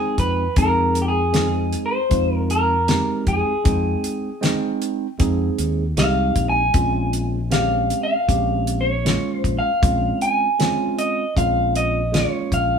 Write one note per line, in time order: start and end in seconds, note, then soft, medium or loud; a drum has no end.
0.00 0.43 G#3 medium
0.00 0.43 C4 medium
0.00 0.43 D#4 medium
0.00 0.16 G#4 medium
0.00 0.44 G5 medium
0.18 0.47 F2 medium
0.18 0.58 B4 medium
0.18 kick medium
0.18 closed hi-hat medium
0.56 1.75 F2 medium
0.56 1.20 G#3 medium
0.56 1.21 C4 medium
0.56 1.21 D#4 medium
0.56 1.21 G#4 medium
0.56 1.01 A#4 medium
0.56 kick loud
0.56 closed hi-hat medium
0.95 closed hi-hat medium
1.02 1.08 G4 medium
1.08 1.81 G#4 medium
1.33 1.97 G#3 medium
1.33 1.97 C4 medium
1.33 1.97 D#4 medium
1.33 1.98 G#4 medium
1.33 snare loud
1.33 closed hi-hat medium
1.73 closed hi-hat medium
1.86 2.36 C5 medium
2.09 2.99 F2 medium
2.09 2.74 G#3 medium
2.09 2.74 C4 medium
2.09 2.75 D#4 medium
2.09 2.75 F4 medium
2.09 kick medium
2.09 closed hi-hat medium
2.36 2.50 A#4 medium
2.50 3.23 A#4 medium
2.50 closed hi-hat medium
2.88 3.52 G#3 medium
2.88 3.52 C4 medium
2.88 3.52 D#4 medium
2.88 3.52 G4 medium
2.88 snare loud
2.88 closed hi-hat medium
3.27 3.42 F2 medium
3.27 4.77 G#4 medium
3.27 kick medium
3.27 closed hi-hat medium
3.64 3.95 F2 medium
3.64 4.28 G#3 medium
3.64 4.29 C4 medium
3.64 4.29 D#4 medium
3.64 4.29 G5 medium
3.64 kick loud
3.64 closed hi-hat medium
4.04 closed hi-hat medium
4.41 5.06 G#3 medium
4.41 5.06 C4 medium
4.41 5.06 D#4 medium
4.41 5.06 G5 loud
4.41 snare loud
4.41 closed hi-hat medium
4.82 closed hi-hat medium
5.19 5.49 F2 medium
5.19 5.83 G#3 medium
5.19 5.83 C4 medium
5.19 5.83 D#4 medium
5.19 5.84 G#4 medium
5.19 kick medium
5.19 closed hi-hat medium
5.58 5.93 D#2 medium
5.58 closed hi-hat medium
5.97 6.31 C2 medium
5.97 6.61 G#3 medium
5.97 6.61 C4 medium
5.97 6.61 D#4 medium
5.97 6.61 G4 medium
5.97 6.49 F5 medium
5.97 snare loud
5.97 closed hi-hat medium
6.36 6.70 A#1 medium
6.36 kick medium
6.36 closed hi-hat medium
6.49 7.52 G#5 loud
6.73 7.92 A#1 medium
6.73 7.37 G#3 medium
6.73 7.38 C4 medium
6.73 7.38 C#4 medium
6.73 7.38 F4 medium
6.73 kick loud
6.73 closed hi-hat medium
7.13 closed hi-hat medium
7.51 8.15 G#3 medium
7.51 8.15 C4 medium
7.51 8.15 C#4 medium
7.51 8.15 G4 medium
7.51 8.02 F5 medium
7.51 snare loud
7.51 closed hi-hat medium
7.90 closed hi-hat medium
8.03 8.82 F5 medium
8.28 9.17 A#1 medium
8.28 8.92 G#3 medium
8.28 8.92 C4 medium
8.28 8.92 C#4 medium
8.28 8.92 G4 medium
8.28 kick medium
8.28 closed hi-hat medium
8.67 closed hi-hat medium
8.81 9.35 C#5 medium
9.05 9.69 G#3 medium
9.05 9.69 A#3 medium
9.05 9.69 C#4 medium
9.05 9.69 F4 medium
9.05 snare loud
9.05 closed hi-hat medium
9.35 9.59 C5 medium
9.44 9.59 A#1 medium
9.44 kick medium
9.44 closed hi-hat medium
9.59 10.22 F5 medium
9.82 10.12 A#1 medium
9.82 10.46 G#3 medium
9.82 10.46 C4 medium
9.82 10.46 C#4 medium
9.82 10.47 F4 medium
9.82 kick loud
9.82 closed hi-hat medium
10.21 10.98 G#5 medium
10.21 closed hi-hat medium
10.59 11.23 G#3 medium
10.59 11.23 C4 medium
10.59 11.23 C#4 medium
10.59 11.24 F4 medium
10.59 snare loud
10.59 closed hi-hat medium
10.99 11.34 D#5 medium
10.99 closed hi-hat medium
11.36 12.25 A#1 medium
11.36 12.00 G#3 medium
11.36 12.00 C4 medium
11.36 12.00 C#4 medium
11.36 12.00 F4 medium
11.36 11.76 F5 medium
11.36 kick medium
11.36 closed hi-hat medium
11.75 12.15 D#5 medium
11.75 closed hi-hat medium
12.12 12.76 G#3 medium
12.12 12.77 A#3 medium
12.12 12.77 C#4 medium
12.12 12.77 F4 medium
12.12 12.53 C#5 medium
12.12 snare loud
12.12 closed hi-hat medium
12.52 12.79 A#1 medium
12.52 12.79 F5 medium
12.52 kick medium
12.52 closed hi-hat medium